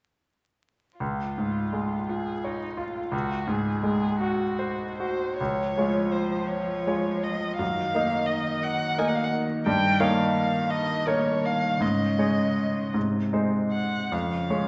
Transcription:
1.00 3.08 C#2 soft
1.00 2.12 F4 soft
1.38 1.96 G#2 soft
1.73 2.31 G#3 soft
2.09 2.65 F4 soft
2.09 2.47 G#4 soft
2.44 2.80 D#4 soft
2.44 2.99 C#5 soft
2.77 3.12 F4 soft
2.77 3.15 F4 soft
3.12 5.35 C#2 soft
3.12 3.49 F#4 soft
3.47 4.06 G#2 soft
3.47 3.83 G#4 soft
3.83 4.42 G#3 soft
3.83 4.20 G#4 soft
4.21 4.97 F#4 soft
4.21 4.82 F#4 soft
4.59 5.24 C5 soft
4.98 5.40 F#4 soft
4.98 5.36 C5 soft
5.37 5.76 C#2 soft
5.37 7.60 F3 soft
5.37 6.13 C#5 soft
5.78 6.84 G#3 soft
5.78 6.84 F4 soft
5.78 6.84 C#5 soft
6.12 6.49 C5 soft
6.48 7.25 C#5 soft
6.87 7.56 G#3 soft
6.87 7.56 F4 soft
6.87 7.56 C#5 soft
7.23 7.56 D#5 soft
7.57 7.93 F#2 soft
7.57 11.78 D#3 soft
7.57 8.28 F5 medium
7.95 8.94 A#3 soft
7.95 8.94 D#4 soft
7.95 8.95 D#5 soft
8.26 8.65 D#5 soft
8.63 9.00 F#5 medium
8.98 9.63 A#3 soft
8.98 9.63 D#4 soft
8.98 9.63 D#5 soft
8.98 9.09 G#5 soft
9.08 9.16 F#5 soft
9.15 9.26 F5 medium
9.24 9.33 F#5 soft
9.66 9.99 G2 soft
9.66 10.02 G5 medium
10.00 11.03 A#3 soft
10.00 11.03 D#4 soft
10.00 11.03 C#5 soft
10.00 10.72 F5 medium
10.70 11.09 D#5 medium
11.07 11.77 A#3 soft
11.07 11.77 D#4 soft
11.07 11.47 C#5 medium
11.07 11.78 C#5 soft
11.46 11.83 F5 medium
11.79 12.18 G#2 soft
11.79 12.94 C#3 soft
11.79 12.96 D#5 soft
12.19 12.91 G#3 soft
12.19 12.91 D#4 soft
12.19 12.91 C#5 soft
12.92 13.32 G#2 soft
12.92 13.90 C3 soft
13.33 14.08 G#3 soft
13.33 14.08 D#4 soft
13.33 14.09 C5 soft
13.73 14.14 F#5 soft
14.10 14.49 F2 soft
14.10 14.68 C#3 soft
14.10 14.68 F5 soft
14.50 14.68 G#3 soft
14.50 14.68 C#4 soft
14.50 14.68 C#5 soft

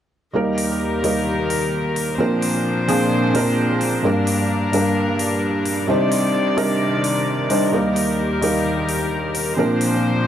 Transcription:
0.33 2.18 D#2 medium
0.33 2.18 D#3 medium
0.33 1.01 G3 medium
0.33 1.01 A#3 medium
0.33 1.01 D#4 medium
0.33 2.18 G4 medium
0.33 2.18 A#4 medium
0.33 1.02 A#4 medium
0.58 open hi-hat loud
1.03 2.16 G3 medium
1.03 2.16 A#3 medium
1.03 2.17 D#4 medium
1.03 2.17 A#4 medium
1.03 open hi-hat loud
1.50 open hi-hat medium
1.96 open hi-hat loud
2.18 2.85 A#2 medium
2.18 4.02 A#2 medium
2.18 2.85 F3 medium
2.18 4.02 F3 medium
2.18 2.86 C4 medium
2.18 5.85 D4 medium
2.18 2.86 D4 medium
2.18 2.86 A#4 medium
2.18 4.02 C5 medium
2.42 open hi-hat loud
2.88 3.32 A#2 medium
2.88 3.32 F3 medium
2.88 3.32 C4 medium
2.88 3.32 D4 medium
2.88 3.32 G#4 loud
2.88 open hi-hat loud
3.33 4.01 A#2 medium
3.33 4.01 F3 medium
3.33 4.01 C4 medium
3.33 4.01 D4 medium
3.33 4.02 A#4 loud
3.33 open hi-hat loud
3.81 open hi-hat loud
4.03 4.70 G2 medium
4.03 5.87 G2 medium
4.03 4.70 G3 medium
4.03 7.70 G3 medium
4.03 4.70 A#3 medium
4.03 4.71 D4 medium
4.03 5.87 A#4 medium
4.03 4.71 A#4 medium
4.27 open hi-hat loud
4.72 5.85 G2 medium
4.72 5.86 G3 medium
4.72 5.86 A#3 medium
4.72 5.86 D4 medium
4.72 5.86 A#4 medium
4.72 open hi-hat loud
5.19 open hi-hat loud
5.66 open hi-hat loud
5.87 6.54 C3 medium
5.87 7.71 C3 medium
5.87 7.71 D#3 medium
5.87 6.55 G3 medium
5.87 6.55 D4 medium
5.87 6.55 D#4 medium
5.87 6.56 C5 medium
5.87 7.71 D5 medium
6.12 open hi-hat loud
6.57 7.01 C3 medium
6.57 7.01 G3 medium
6.57 7.01 D4 medium
6.57 7.01 D#4 medium
6.57 7.01 A#4 loud
6.57 open hi-hat loud
7.04 open hi-hat loud
7.50 7.70 G3 medium
7.50 7.70 D4 medium
7.50 7.71 D#4 medium
7.50 7.71 C5 medium
7.50 open hi-hat loud
7.72 9.56 D#2 medium
7.72 9.56 D#3 medium
7.72 8.39 G3 medium
7.72 8.40 A#3 medium
7.72 8.40 D#4 medium
7.72 9.56 G4 medium
7.72 9.56 A#4 medium
7.72 8.40 A#4 medium
7.96 open hi-hat loud
8.41 9.54 G3 medium
8.41 9.55 A#3 medium
8.41 9.55 D#4 medium
8.41 9.56 A#4 medium
8.41 open hi-hat loud
8.89 open hi-hat loud
9.35 open hi-hat loud
9.57 10.24 A#2 medium
9.57 10.27 A#2 medium
9.57 10.24 F3 medium
9.57 10.27 F3 medium
9.57 10.24 C4 medium
9.57 10.27 D4 medium
9.57 10.25 D4 medium
9.57 10.25 A#4 medium
9.57 10.27 C5 medium
9.81 open hi-hat loud

